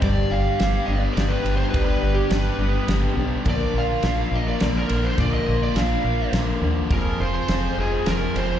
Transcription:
<<
  \new Staff \with { instrumentName = "Lead electric guitar" } { \time 3/4 \key bes \mixolydian \tempo 4 = 104 d''8 f''4 ees''16 d''16 d''16 b'8 c''16 | b'16 b'8 g'16 b'4 r4 | d''8 f''4 ees''16 d''16 d''16 bes'8 c''16 | d''16 ees''8 d''16 f''4 r4 |
bes'8 c''16 c''8. aes'8 bes'8 c''8 | }
  \new Staff \with { instrumentName = "Overdriven electric guitar" } { \time 3/4 \key bes \mixolydian g,8 g'8 d'8 b8 g8 d'8 | g,8 g'8 d'8 b8 g8 d'8 | bes,8 f'8 d'8 bes8 d8 d'8 | bes,8 f'8 d'8 bes8 d8 d'8 |
f,8 f'8 c'8 aes8 f8 c'8 | }
  \new Staff \with { instrumentName = "Steel-string acoustic guitar" } { \time 3/4 \key bes \mixolydian <g, d g b d' g'>4 <g b d' g'>8 <g b d' g'>8 <g b d' g'>4 | <g, d g b d' g'>4 <g b d' g'>8 <g b d' g'>8 <g b d' g'>8 <g b d' g'>8 | <bes, d f bes d' bes'>4 <f bes d' bes'>8 <f bes d' bes'>8 <f bes d' bes'>4 | <bes, d f bes d' bes'>4 <f bes d' bes'>4 <f bes d' bes'>8 <f bes d' bes'>8 |
<f c' f' aes'>4 <f c' f' aes'>4 <f c' f' aes'>4 | }
  \new Staff \with { instrumentName = "Fingered electric bass" } { \clef bass \time 3/4 \key bes \mixolydian g,,8 g,,8 g,,8 g,,8 g,,8 g,,8 | g,,8 g,,8 g,,8 g,,8 g,,8 b,,8 | bes,,8 bes,,8 bes,,8 bes,,8 bes,,8 bes,,8 | bes,,8 bes,,8 bes,,8 bes,,8 bes,,8 ees,8 |
f,,8 f,,8 f,,8 f,,8 f,,8 f,,8 | }
  \new DrumStaff \with { instrumentName = "Drums" } \drummode { \time 3/4 <bd cymr>4 <cymr sn>4 <cymr sn>8 cymr8 | <bd cymr>4 <cymr sn>4 <cymr sn>4 | <bd cymr>4 <cymr sn>4 <cymr sn>8 cymr8 | <bd cymr>4 <cymr sn>4 <cymr sn>4 |
<bd cymr>4 <cymr sn>4 <cymr sn>8 cymr8 | }
>>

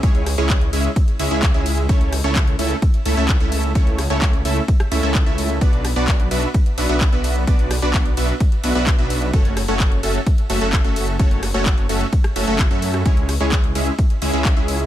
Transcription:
<<
  \new Staff \with { instrumentName = "Supersaw synth" } { \time 4/4 \key a \major \tempo 4 = 129 <gis cis' e' gis' cis''>8 r16 <gis cis' e' gis' cis''>8. <gis cis' e' gis' e''>16 r8. <gis cis' e' gis' e''>16 <gis cis' e' gis' e''>8 <gis cis' e' gis' e''>8. | <a cis' e' a' cis''>8 r16 <a cis' e' a' cis''>8. <a cis' e' a' e''>16 r8. <a cis' e' a' e''>16 <a cis' e' a' e''>8 <a cis' e' a' e''>8. | <a cis' e' a' cis''>8 r16 <a cis' e' a' cis''>8. <a cis' e' a' e''>16 r8. <a cis' e' a' e''>16 <a cis' e' a' e''>8 <a cis' e' a' e''>8. | <b d' fis' b' d''>8 r16 <b d' fis' b' d''>8. <b d' fis' b' e''>16 r8. <b d' fis' b' e''>16 <b d' fis' b' e''>8 <b d' fis' b' e''>8. |
<b d' fis' b' d''>8 r16 <b d' fis' b' d''>8. <b d' fis' b' e''>16 r8. <b d' fis' b' e''>16 <b d' fis' b' e''>8 <b d' fis' b' e''>8. | <a cis' fis' a' cis''>8 r16 <a cis' fis' a' cis''>8. <a cis' fis' a' e''>16 r8. <a cis' fis' a' e''>16 <a cis' fis' a' e''>8 <a cis' fis' a' e''>8. | <a cis' fis' a' cis''>8 r16 <a cis' fis' a' cis''>8. <a cis' fis' a' e''>16 r8. <a cis' fis' a' e''>16 <a cis' fis' a' e''>8 <a cis' fis' a' e''>8. | <gis cis' e' gis' cis''>8 r16 <gis cis' e' gis' cis''>8. <gis cis' e' gis' e''>16 r8. <gis cis' e' gis' e''>16 <gis cis' e' gis' e''>8 <gis cis' e' gis' e''>8. | }
  \new Staff \with { instrumentName = "Detuned saw bass" } { \clef bass \time 4/4 \key a \major cis,8. cis,8. cis,16 r8. cis,16 cis,8 cis,8. | cis,8. cis,8. cis,16 r8. cis,16 cis,8 cis,8. | cis,8. cis,8. cis,16 r8. cis,16 cis,8 cis,8. | b,,8. b,,8. b,,16 r8. b,,16 b,,8 b,,8. |
b,,8. b,,8. b,,16 r8. b,,16 b,,8 b,,8. | fis,,8. fis,,8. fis,,16 r8. fis,,16 fis,,8 fis,,8. | fis,,8. fis,,8. fis,,16 r8. fis,,16 fis,,8 fis,8. | cis,8. cis,8. cis,16 r8. cis,16 cis,8 cis,8. | }
  \new DrumStaff \with { instrumentName = "Drums" } \drummode { \time 4/4 <hh bd cymr>16 hh16 <hho cymr ss>16 hh16 <hc hh bd cymr>16 hh16 <hho cymr>16 hh16 <hh bd cymr>16 hh16 <hho cymr>16 hh16 <hc hh bd cymr>16 hh16 <hho cymr>16 hh16 | <hh bd cymr>16 hh16 <hho cymr ss>16 hh16 <hc hh bd cymr>16 hh16 <hho cymr>16 hh16 <hh bd cymr>16 hh16 <hho cymr>16 hh16 <hc hh bd cymr>16 hh16 <hho cymr>16 hh16 | <hh bd cymr>16 hh16 <hho cymr ss>16 hh16 <hc hh bd cymr>16 hh16 <hho cymr>16 hh16 <hh bd cymr>16 <hh ss>16 <hho cymr>16 hh16 <hc hh bd cymr>16 hh16 <hho cymr>16 hh16 | <hh bd cymr>16 hh16 <hho cymr ss>16 hh16 <hc hh bd cymr>16 hh16 <hho cymr>16 hh16 <hh bd cymr>16 hh16 <hho cymr>16 hh16 <hc hh bd cymr>16 hh16 <hho cymr>16 hh16 |
<hh bd cymr>16 hh16 <hho cymr ss>16 hh16 <hc hh bd cymr>16 hh16 <hho cymr>16 hh16 <hh bd cymr>16 hh16 <hho cymr>16 hh16 <hc hh bd cymr>16 hh16 <hho cymr>16 hh16 | <hh bd cymr>16 hh16 <hho cymr ss>16 hh16 <hc hh bd cymr>16 hh16 <hho cymr>16 hh16 <hh bd cymr>16 hh16 <hho cymr>16 hh16 <hc hh bd cymr>16 hh16 <hho cymr>16 hh16 | <hh bd cymr>16 hh16 <hho cymr ss>8 <hc hh bd cymr>16 hh16 <hho cymr>16 hh16 <hh bd cymr>16 <hh ss>16 <hho cymr>16 hh16 <hc hh bd cymr>16 hh16 <hho cymr>16 <hh ss>16 | <hh bd cymr>16 hh16 <hho cymr ss>8 <hc hh bd cymr>16 hh16 <hho cymr>16 hh16 <hh bd cymr>16 hh16 <hho cymr>16 hh16 <hc hh bd cymr>16 hh16 <hho cymr>16 hh16 | }
>>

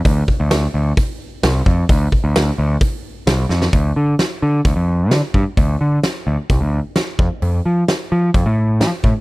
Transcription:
<<
  \new Staff \with { instrumentName = "Picked electric bass" } { \clef bass \time 4/4 \key f \major \tempo 4 = 130 d,8 r16 d,8. d,8 r4 c,8 f,8 | d,8 r16 d,8. d,8 r4 c,8 f,8 | d,8 d8 r8 d8 d,16 f,8. d16 r16 g,16 r16 | d,8 d8 r8 d,16 r16 c,16 d,8 r8. f,16 r16 |
f,8 f8 r8 f8 f,16 a,8. f16 r16 a,16 r16 | }
  \new DrumStaff \with { instrumentName = "Drums" } \drummode { \time 4/4 <hho bd>8 bd8 <hho sn>4 <hho bd>4 <hho sn>8 bd8 | <hho bd>8 bd8 <hho sn>4 <hho bd>4 <hho sn>8 sn16 sn16 | <hho bd>4 <hho sn>4 <hho bd>4 <hho sn>8 bd8 | <hho bd>4 <hho sn>4 <hho bd>4 <hho sn>8 bd8 |
hho4 <hho sn>4 <hho bd>4 <hho sn>8 bd8 | }
>>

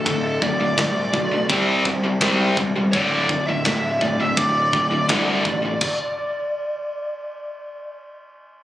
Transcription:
<<
  \new Staff \with { instrumentName = "Lead electric guitar" } { \time 4/4 \key c \mixolydian \tempo 4 = 83 a'8 d''4. r2 | d''8. e''8. d''16 e''16 d''2~ | d''2. r4 | }
  \new Staff \with { instrumentName = "Distorted electric guitar" } { \clef bass \time 4/4 \key c \mixolydian <d, a,>8 <d, a,>16 <d, a,>16 <d, a,>8 <d, a,>16 <d, a,>16 <c g c'>8 <c g>16 <c g>16 <c g c'>8 <c g>16 <c g>16 | <d, a, d>8 <d, a,>16 <d, a,>16 <d, a,>8 <d, a,>16 <d, a,>16 <d, a,>8 <d, a,>16 <d, a,>16 <d, a, d>8 <d, a,>16 <d, a,>16 | r1 | }
  \new Staff \with { instrumentName = "Distorted electric guitar" } { \clef bass \time 4/4 \key c \mixolydian <d, a,>8 <d, a,>16 <d, a,>16 <d, a,>8 <d, a,>16 <d, a,>16 <c g c'>8 <c g>16 <c g>16 <c g c'>8 <c g>16 <c g>16 | <d, a, d>8 <d, a,>16 <d, a,>16 <d, a,>8 <d, a,>16 <d, a,>16 <d, a,>8 <d, a,>16 <d, a,>16 <d, a, d>8 <d, a,>16 <d, a,>16 | r1 | }
  \new Staff \with { instrumentName = "Picked electric bass" } { \clef bass \time 4/4 \key c \mixolydian d,,8 d,,8 c,8 b,,8 c,8 c,8 c,8 e,,8 | d,,8 d,,8 d,,8 d,,8 d,,8 d,,8 c,8 a,,8 | r1 | }
  \new DrumStaff \with { instrumentName = "Drums" } \drummode { \time 4/4 <bd rb>8 bd8 <bd rb sn>8 bd8 <bd rb>8 bd8 <bd rb sn>8 bd8 | <bd rb>8 bd8 <bd rb sn>8 bd8 <bd rb>8 bd8 <bd rb sn>8 bd8 | <cymc bd>4 r4 r4 r4 | }
>>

